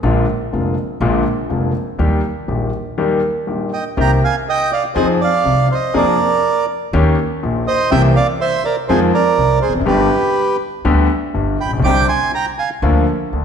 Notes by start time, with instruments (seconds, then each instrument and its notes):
0.03 upright bass A#1, grand piano A#1 A#2 D3 G#3 A#3 F4
0.53 grand piano F1 F2 D3 G#3 A#3 F4, upright bass F1
1.01 upright bass A#1, grand piano A#1 A#2 D3 G#3 A#3 F4
1.49 grand piano F1 F2 D3 G#3 A#3 F4, upright bass F1
1.98 grand piano D#2 D#3 G3 A#3 G4, upright bass D#2
2.48 upright bass A#1, grand piano A#1 A#2 D#3 G3 A#3 G4
2.98 grand piano D#2 D#3 G3 A#3 G4
3.47 grand piano A#1 A#2 D#3 G3 A#3 G4
3.73 bandoneon D#5 G5
3.97 upright bass C2, grand piano C2 C3 D#3 A#3 C4 G4, bandoneon G5
4.01 bandoneon A#5
4.24 bandoneon F5 G#5
4.49 bandoneon D#5 G5
4.72 bandoneon D5 F5
4.95 grand piano F2 F3 C4 D#4 G#4, upright bass F2, bandoneon C5 D#5
5.21 bandoneon D5 F5
5.45 grand piano C2 C3, upright bass C2
5.72 bandoneon C5 D#5
5.94 grand piano F2 F3 A#3 D4 G#4, upright bass F2, bandoneon A#4 D5
6.93 upright bass D#2, grand piano D#2 D#3 A#3 C#4 G4
7.43 grand piano A#1 A#2, upright bass A#1
7.68 bandoneon C5 D#5
7.91 upright bass C2, grand piano C2 C3 E3 A#3 C4 G4, bandoneon E5 G5
8.16 bandoneon D5 F5
8.41 bandoneon C5 E5
8.65 bandoneon A#4 D5
8.88 upright bass F2, grand piano F2 D#3 F3 G#3 C4 F4, bandoneon G#4 C5
9.14 bandoneon A#4 D5
9.37 grand piano C2 C3, upright bass C2
9.62 bandoneon G#4 C5
9.68 upright bass E1, grand piano E2
9.73 upright bass F1, grand piano F2
9.79 upright bass F#1, grand piano F#2
9.85 grand piano G1 G2 D3 G3 B3 G4, upright bass G1, bandoneon G4 B4
10.85 upright bass D2, grand piano D2 D3 G3 B3 G4
11.34 grand piano G1 G2, upright bass G1
11.61 bandoneon G5 B5
11.65 upright bass A1, grand piano A1
11.71 upright bass A#1, grand piano A#1
11.77 upright bass B1, grand piano B1
11.82 upright bass C2, grand piano C2 C3 D3 G3 C4 G4, bandoneon G5 D6
12.08 bandoneon G#5 C6
12.35 bandoneon G5 A#5
12.59 bandoneon F5 G#5
12.82 upright bass D2, grand piano D2 D3 F3 A#3 F4
13.33 upright bass D2, grand piano D2 D3